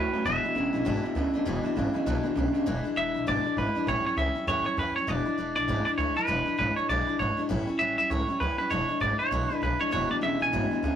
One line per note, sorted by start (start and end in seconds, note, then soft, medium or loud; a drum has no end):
0.00 0.11 A2 medium
0.00 0.13 E3 medium
0.00 0.11 F#3 medium
0.00 0.14 G3 medium
0.00 0.14 C#4 medium
0.00 0.12 E4 medium
0.00 0.26 B4 medium
0.13 0.24 A2 medium
0.13 0.24 F#3 medium
0.13 0.26 G3 soft
0.13 0.26 C#4 medium
0.13 0.25 E4 medium
0.25 0.38 E1 medium
0.25 0.42 E2 medium
0.25 0.43 E2 medium
0.25 0.43 B2 medium
0.25 0.42 B2 medium
0.25 0.44 E3 medium
0.25 0.44 G#3 medium
0.25 0.43 D4 medium
0.25 0.42 E4 medium
0.25 1.60 E5 loud
0.43 0.54 E2 medium
0.43 0.54 B2 medium
0.43 0.54 E3 medium
0.43 0.55 G#3 medium
0.43 0.56 D4 medium
0.43 0.55 E4 medium
0.55 0.68 E1 loud
0.55 0.72 E2 medium
0.55 0.72 C#3 loud
0.55 0.73 E3 medium
0.55 0.74 G#3 medium
0.55 0.73 D4 medium
0.55 0.72 E4 medium
0.73 0.82 B1 loud
0.73 0.84 E2 medium
0.73 0.84 C#3 medium
0.73 0.85 E3 medium
0.73 0.85 G#3 medium
0.73 0.86 D4 medium
0.73 0.85 E4 medium
0.85 0.98 G#1 medium
0.85 1.03 E2 medium
0.85 1.02 E2 medium
0.85 1.04 B2 loud
0.85 1.02 B2 loud
0.85 1.04 E3 loud
0.85 1.04 G#3 loud
0.85 1.04 D4 medium
0.85 1.02 E4 loud
1.03 1.14 E2 medium
1.03 1.15 B2 medium
1.03 1.14 E3 soft
1.03 1.15 G#3 medium
1.03 1.16 D4 medium
1.03 1.15 E4 medium
1.03 muted upright bass stroke medium
1.15 1.29 D2 medium
1.15 1.32 E2 medium
1.15 1.32 C#3 medium
1.15 1.34 E3 medium
1.15 1.34 G#3 medium
1.15 1.34 D4 medium
1.15 1.32 E4 medium
1.34 1.45 E2 medium
1.34 1.45 C#3 medium
1.34 1.45 E3 soft
1.34 1.46 G#3 medium
1.34 1.46 D4 medium
1.34 1.46 E4 medium
1.45 1.59 E1 medium
1.45 1.64 E2 medium
1.45 1.62 E2 medium
1.45 1.64 B2 medium
1.45 1.62 B2 medium
1.45 1.64 E3 loud
1.45 1.64 G#3 medium
1.45 1.63 D4 medium
1.45 1.62 E4 loud
1.60 1.76 E4 medium
1.60 2.32 D5 loud
1.64 1.75 E2 medium
1.64 1.75 B2 medium
1.64 1.74 E3 medium
1.64 1.75 G#3 medium
1.64 1.76 D4 medium
1.64 muted upright bass stroke medium
1.76 1.89 G#1 medium
1.76 1.93 E2 medium
1.76 1.93 C#3 medium
1.76 1.94 E3 medium
1.76 1.94 G#3 medium
1.76 1.94 D4 medium
1.76 1.93 E4 medium
1.94 2.04 E2 medium
1.94 2.05 C#3 medium
1.94 2.06 E3 medium
1.94 2.06 G#3 medium
1.94 2.06 D4 medium
1.94 2.06 E4 medium
1.94 muted upright bass stroke medium
2.06 2.19 B1 medium
2.06 2.22 E2 medium
2.06 2.24 E2 medium
2.06 2.22 B2 medium
2.06 2.24 B2 medium
2.06 2.25 E3 loud
2.06 2.24 G#3 medium
2.06 2.23 D4 loud
2.06 2.22 E4 loud
2.23 2.34 E2 medium
2.23 2.35 B2 medium
2.23 2.34 E3 medium
2.23 2.36 G#3 medium
2.23 2.36 D4 medium
2.23 2.36 E4 medium
2.35 2.49 B1 medium
2.35 2.52 E2 medium
2.35 2.52 C#3 medium
2.35 2.54 E3 medium
2.35 2.55 G#3 medium
2.35 2.54 D4 medium
2.35 2.53 E4 medium
2.53 2.64 E2 medium
2.53 2.65 C#3 medium
2.53 2.65 E3 soft
2.53 2.66 G#3 medium
2.53 2.66 D4 medium
2.53 2.66 E4 medium
2.66 2.80 E1 loud
2.66 2.84 E2 medium
2.66 2.85 B2 medium
2.66 2.85 E3 loud
2.66 2.85 G#3 loud
2.66 2.84 D4 loud
2.66 2.83 E4 medium
2.84 2.95 E3 medium
2.84 2.96 G#3 medium
2.84 2.97 D4 medium
2.84 2.96 E4 medium
2.84 muted upright bass stroke medium
2.96 3.10 E1 medium
2.96 3.15 E3 medium
2.96 3.15 G#3 medium
2.96 3.15 D4 medium
2.96 3.13 E4 medium
2.96 3.25 E5 loud
3.14 3.23 B1 medium
3.14 3.26 E3 soft
3.14 3.27 G#3 soft
3.14 3.27 D4 medium
3.14 3.26 E4 medium
3.26 3.40 G#1 medium
3.26 3.45 E2 medium
3.26 3.45 B2 medium
3.26 3.45 E3 medium
3.26 3.45 G#3 medium
3.26 3.45 D4 medium
3.26 3.43 E4 medium
3.26 3.55 D5 loud
3.44 3.56 E3 soft
3.44 3.57 G#3 medium
3.44 3.57 D4 medium
3.44 3.56 E4 medium
3.44 muted upright bass stroke medium
3.56 3.70 G#1 medium
3.56 3.75 E3 medium
3.56 3.76 G#3 medium
3.56 3.75 D4 medium
3.56 3.74 E4 medium
3.56 3.88 B4 medium
3.75 3.87 E3 soft
3.75 3.88 G#3 medium
3.75 3.87 D4 medium
3.75 3.87 E4 medium
3.75 muted upright bass stroke medium
3.86 4.00 A1 loud
3.86 4.05 A2 medium
3.86 4.06 E3 medium
3.86 4.06 G3 medium
3.86 4.05 C#4 medium
3.86 4.03 E4 medium
3.86 4.05 C#5 loud
4.04 4.17 G3 soft
4.04 4.18 C#4 soft
4.04 4.17 E4 medium
4.04 4.17 C#5 medium
4.04 muted upright bass stroke medium
4.16 4.30 C#2 medium
4.16 4.35 E3 medium
4.16 4.36 G3 medium
4.16 4.36 C#4 medium
4.16 4.34 E4 medium
4.16 4.48 E5 medium
4.35 4.47 G3 soft
4.35 4.47 C#4 soft
4.35 4.47 E4 medium
4.35 muted upright bass stroke medium
4.47 4.60 E2 medium
4.47 4.65 A2 medium
4.47 4.66 E3 medium
4.47 4.66 G3 medium
4.47 4.65 C#4 medium
4.47 4.64 E4 medium
4.47 4.65 C#5 loud
4.65 4.77 G3 soft
4.65 4.78 C#4 soft
4.65 4.77 E4 medium
4.65 4.77 C#5 medium
4.65 muted upright bass stroke medium
4.77 4.90 E2 medium
4.77 4.95 E3 medium
4.77 4.96 G3 medium
4.77 4.96 C#4 medium
4.77 4.95 E4 medium
4.77 4.95 B4 medium
4.95 5.09 C#4 medium
4.95 5.08 E4 medium
4.95 5.08 C#5 medium
4.95 muted upright bass stroke medium
4.99 5.08 G3 soft
5.07 5.21 E1 loud
5.07 5.26 E2 medium
5.07 5.26 B2 medium
5.07 5.26 E3 medium
5.07 5.26 G#3 medium
5.07 5.25 D4 medium
5.07 5.24 E4 medium
5.07 5.55 D5 loud
5.26 5.36 E3 soft
5.26 5.37 G#3 soft
5.26 5.38 D4 soft
5.26 5.38 E4 medium
5.37 5.51 E1 medium
5.37 5.56 E3 medium
5.37 5.56 G#3 medium
5.37 5.55 D4 medium
5.37 5.55 E4 medium
5.56 5.64 B1 loud
5.56 5.67 E3 soft
5.56 5.68 G#3 soft
5.56 5.68 D4 medium
5.56 5.68 E4 medium
5.56 5.84 D5 medium
5.67 5.81 G#1 loud
5.67 5.86 E2 medium
5.67 5.86 B2 medium
5.67 5.87 E3 medium
5.67 5.86 G#3 medium
5.67 5.85 D4 medium
5.67 5.84 E4 medium
5.85 5.96 E3 soft
5.85 5.98 G#3 soft
5.85 5.98 D4 medium
5.85 5.98 E4 medium
5.85 5.90 D5 medium
5.85 muted upright bass stroke medium
5.98 6.11 D2 medium
5.98 6.16 E3 medium
5.98 6.17 G#3 medium
5.98 6.16 D4 medium
5.98 6.14 E4 medium
5.98 6.16 C#5 medium
6.16 6.27 E3 medium
6.16 6.27 G#3 soft
6.16 6.28 D4 soft
6.16 6.28 E4 medium
6.16 6.57 B4 medium
6.27 6.41 E1 medium
6.27 6.46 E2 medium
6.27 6.46 B2 medium
6.27 6.47 E3 medium
6.27 6.47 G#3 medium
6.27 6.46 D4 medium
6.27 6.44 E4 medium
6.46 6.56 E3 soft
6.46 6.58 G#3 soft
6.46 6.59 D4 medium
6.46 6.58 E4 medium
6.58 6.72 G#1 medium
6.58 6.76 E3 medium
6.58 6.77 G#3 medium
6.58 6.76 D4 medium
6.58 6.75 E4 medium
6.58 6.76 B4 medium
6.76 6.89 E3 soft
6.76 6.89 G#3 soft
6.76 6.89 D4 medium
6.76 6.89 E4 medium
6.76 6.89 C#5 medium
6.76 muted upright bass stroke medium
6.89 7.02 B1 medium
6.89 7.07 E2 medium
6.89 7.08 B2 medium
6.89 7.08 E3 medium
6.89 7.08 G#3 medium
6.89 7.07 D4 medium
6.89 7.06 E4 medium
6.89 7.19 D5 medium
7.07 7.18 E3 soft
7.07 7.19 G#3 soft
7.07 7.20 D4 medium
7.07 7.19 E4 medium
7.07 muted upright bass stroke medium
7.19 7.32 G#1 medium
7.19 7.37 E3 medium
7.19 7.38 G#3 medium
7.19 7.37 D4 medium
7.19 7.36 E4 medium
7.19 7.42 C#5 medium
7.37 7.48 E3 soft
7.37 7.50 G#3 medium
7.37 7.50 D4 medium
7.37 7.49 E4 medium
7.37 muted upright bass stroke medium
7.49 7.63 A1 medium
7.49 7.67 A2 medium
7.49 7.68 E3 medium
7.49 7.68 G3 medium
7.49 7.67 C#4 loud
7.49 7.66 E4 medium
7.67 7.79 G3 medium
7.67 7.80 C#4 medium
7.67 7.79 E4 medium
7.79 7.93 A1 medium
7.79 7.98 E3 medium
7.79 7.98 G3 medium
7.79 7.98 C#4 medium
7.79 7.97 E4 medium
7.79 7.97 E5 medium
7.98 8.07 E2 medium
7.98 8.10 G3 soft
7.98 8.11 C#4 soft
7.98 8.10 E4 medium
7.98 8.10 E5 medium
8.10 8.23 C#2 medium
8.10 8.28 A2 medium
8.10 8.29 E3 medium
8.10 8.29 G3 medium
8.10 8.29 C#4 medium
8.10 8.27 E4 medium
8.10 8.41 C#5 medium
8.28 8.40 G3 soft
8.28 8.41 C#4 medium
8.28 8.40 E4 medium
8.28 muted upright bass stroke medium
8.40 8.54 D2 medium
8.40 8.59 E3 medium
8.40 8.59 G3 medium
8.40 8.59 C#4 medium
8.40 8.57 E4 medium
8.40 8.57 B4 medium
8.58 8.71 G3 soft
8.58 8.71 C#4 medium
8.58 8.70 E4 medium
8.58 8.70 B4 medium
8.70 8.84 E1 medium
8.70 8.89 E2 medium
8.70 8.89 B2 medium
8.70 8.89 E3 medium
8.70 8.89 G#3 medium
8.70 8.89 D4 medium
8.70 8.87 E4 medium
8.70 8.99 C#5 medium
8.88 8.99 E3 soft
8.88 9.00 G#3 soft
8.88 9.01 D4 medium
8.88 9.01 E4 medium
8.88 muted upright bass stroke medium
9.00 9.14 G#1 medium
9.00 9.19 E3 medium
9.00 9.19 G#3 medium
9.00 9.19 D4 medium
9.00 9.18 E4 medium
9.00 9.19 D5 medium
9.19 9.31 E3 soft
9.19 9.31 G#3 soft
9.19 9.32 D4 medium
9.19 9.31 E4 soft
9.19 9.63 C#5 medium
9.19 muted upright bass stroke medium
9.31 9.45 B1 medium
9.31 9.50 E2 medium
9.31 9.50 B2 medium
9.31 9.50 E3 medium
9.31 9.50 G#3 medium
9.31 9.49 D4 medium
9.31 9.48 E4 loud
9.50 9.60 E3 soft
9.50 9.62 G#3 soft
9.50 9.62 D4 medium
9.50 9.62 E4 medium
9.62 9.75 B1 medium
9.62 9.80 E3 medium
9.62 9.80 G#3 medium
9.62 9.79 D4 medium
9.62 9.78 E4 medium
9.62 9.79 B4 medium
9.79 9.91 E3 soft
9.79 9.91 G#3 soft
9.79 9.91 D4 medium
9.79 9.92 E4 medium
9.79 9.91 C#5 loud
9.79 muted upright bass stroke medium
9.91 10.06 E1 medium
9.91 10.10 E2 medium
9.91 10.08 E2 medium
9.91 10.10 B2 medium
9.91 10.08 B2 medium
9.91 10.11 E3 medium
9.91 10.10 G#3 medium
9.91 10.09 D4 medium
9.91 10.08 E4 medium
9.91 10.11 C#5 loud
10.10 10.21 E2 medium
10.10 10.21 B2 medium
10.10 10.20 E3 soft
10.10 10.21 G#3 soft
10.10 10.23 D4 soft
10.10 10.22 E4 medium
10.10 10.16 D5 medium
10.10 muted upright bass stroke medium
10.21 10.36 E1 loud
10.21 10.39 E2 medium
10.21 10.39 C#3 medium
10.21 10.40 E3 medium
10.21 10.40 G#3 medium
10.21 10.39 D4 medium
10.21 10.38 E4 medium
10.21 10.42 E5 loud
10.39 10.50 B1 medium
10.39 10.51 E2 medium
10.39 10.52 C#3 medium
10.39 10.52 E3 soft
10.39 10.52 G#3 soft
10.39 10.53 D4 soft
10.39 10.52 E4 medium
10.39 10.96 G#5 loud
10.52 10.66 G#1 medium
10.52 10.71 E2 medium
10.52 10.69 E2 medium
10.52 10.71 B2 medium
10.52 10.69 B2 loud
10.52 10.71 E3 medium
10.52 10.72 G#3 medium
10.52 10.71 D4 medium
10.52 10.70 E4 loud
10.71 10.82 E2 medium
10.71 10.82 B2 medium
10.71 10.81 E3 soft
10.71 10.83 G#3 soft
10.71 10.84 D4 medium
10.71 10.83 E4 medium
10.71 muted upright bass stroke medium
10.83 10.96 D2 medium
10.83 10.96 E2 medium
10.83 10.96 C#3 medium
10.83 10.96 E3 medium
10.83 10.96 G#3 medium
10.83 10.96 D4 medium
10.83 10.96 E4 medium